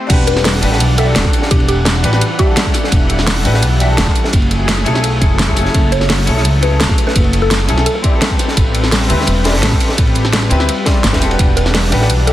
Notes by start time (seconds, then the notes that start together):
0.07 E1 E3 G3 D4 F#4 G4 F#5, kick, closed hi-hat, ride, crash
0.13 B4
0.27 B4, closed hi-hat, ride
0.36 snare
0.45 snare, closed hi-hat, open hi-hat
0.54 snare
0.61 A1 D4 F#4 G4 B4, closed hi-hat, ride
0.70 D4 F#4 G4 B4, snare
0.80 B1, closed hi-hat, ride
0.97 D4 F#4 G4 A4 E5, closed hi-hat, ride
1.04 D4 F#4 G4
1.10 A4
1.16 E1, snare, closed hi-hat, ride
1.25 kick, snare
1.33 open hi-hat, ride
1.42 snare
1.51 E1 G4, kick, closed hi-hat, ride
1.60 ride
1.68 G4, closed hi-hat, ride
1.85 snare, closed hi-hat, ride
1.95 snare
2.03 A1 D4 F#4 G4 B4, closed hi-hat, ride
2.12 D4 F#4 G4 B4, snare
2.21 E4, closed hi-hat, ride
2.38 D4 F#4 G4 E5, kick, closed hi-hat, ride
2.45 D4 G4 F#5
2.51 A4
2.56 snare, closed hi-hat, ride
2.66 kick
2.74 snare, open hi-hat, ride
2.84 snare
2.92 E1, kick, closed hi-hat, ride
3.09 closed hi-hat, ride
3.19 snare
3.27 snare, closed hi-hat, open hi-hat
3.36 snare
3.44 A1 D4 F#4 G4 B4, closed hi-hat, ride
3.53 D4 F#4 G4 B4, snare
3.62 B1, closed hi-hat, ride
3.79 D4 F#4 G4 E5, closed hi-hat, ride
3.86 D4 F#4 G4
3.92 A4
3.98 E1, snare, closed hi-hat, ride
4.07 kick, snare
4.15 open hi-hat, ride
4.24 snare
4.33 F#1 F#3 A3 E4 G#4, kick, closed hi-hat, ride
4.42 ride
4.51 closed hi-hat, ride
4.68 snare, closed hi-hat, ride
4.78 snare
4.85 B1 C#4 E4 G#4 A4, closed hi-hat, ride
4.94 C#4 E4 G#4 A4, snare
5.04 closed hi-hat, ride
5.20 F#1 C#4 E4 G#4 A4, kick, closed hi-hat, ride
5.39 snare, closed hi-hat, ride
5.47 C#4 E4 G#4 A4, kick
5.55 F#1 C#4 E4 G#4 A4, snare, open hi-hat, ride
5.63 C#4 E4 G#4, snare
5.69 A4
5.74 F#1, kick, closed hi-hat, ride
5.92 C#5, closed hi-hat, ride
6.01 snare
6.10 snare, closed hi-hat, open hi-hat
6.18 snare
6.26 B1 C#4 E4 G#4 A4, closed hi-hat, ride
6.35 C#4 E4 G#4 A4, snare
6.45 C#2, closed hi-hat, ride
6.61 C#4 E4 G#4 A4 B4, closed hi-hat, ride
6.69 C#4 E4 G#4
6.75 A4
6.80 F#1, snare, closed hi-hat, ride
6.89 kick, snare
6.98 open hi-hat, ride
7.07 B4, snare
7.16 F#1, kick, closed hi-hat, ride
7.24 ride
7.33 closed hi-hat, ride
7.42 A4
7.51 snare, closed hi-hat, ride
7.60 snare
7.67 B1 C#4 E4 G#4 A4, closed hi-hat, ride
7.76 C#4 E4 G#4 A4, snare
7.86 G3 C4 A4 B4, closed hi-hat, ride
7.95 A4
8.02 C4 E4 G4 D5, kick, closed hi-hat, ride
8.10 C4 E4 G4
8.16 A4
8.22 snare, closed hi-hat, ride
8.31 kick
8.39 snare, open hi-hat, ride
8.48 snare
8.57 A1, kick, closed hi-hat, ride
8.75 closed hi-hat, ride
8.83 snare
8.92 snare, closed hi-hat, open hi-hat
9.01 snare
9.08 D2 C4 E4 G4 B4, closed hi-hat, ride
9.17 C4 E4 G4 B4, snare
9.27 E1, closed hi-hat, ride
9.44 C4 E4 G4 D5, snare, closed hi-hat, open hi-hat
9.51 C4 E4 G4, snare, open hi-hat
9.57 A4
9.63 A1, snare, closed hi-hat, ride
9.72 kick, snare
9.80 open hi-hat, ride
9.89 snare
9.98 A1, kick, closed hi-hat, ride
10.07 ride
10.15 closed hi-hat, ride
10.25 snare
10.33 snare, closed hi-hat, ride
10.42 snare
10.50 D2 C4 E4 G4 B4, closed hi-hat, ride
10.58 C4 E4 G4 B4, snare
10.69 closed hi-hat, ride
10.85 C4 E4 G4 D5, kick, snare, closed hi-hat, ride
11.04 G1, snare, closed hi-hat, ride
11.11 C4 E4 G4 B4, kick, snare, ride
11.20 E1 C4 E4 G4 A4, snare, open hi-hat
11.28 D4 F#4 G4, ride
11.34 B4
11.39 E1 E3 D4 F#5, kick, closed hi-hat, ride
11.57 B4, closed hi-hat, ride
11.66 snare
11.74 snare, closed hi-hat, open hi-hat
11.84 snare
11.91 A1 D4 F#4 G4 B4, closed hi-hat, ride
12.00 D4 F#4 G4 B4, snare
12.10 B1, closed hi-hat, ride
12.26 D4 F#4 G4 A4 E5, closed hi-hat, ride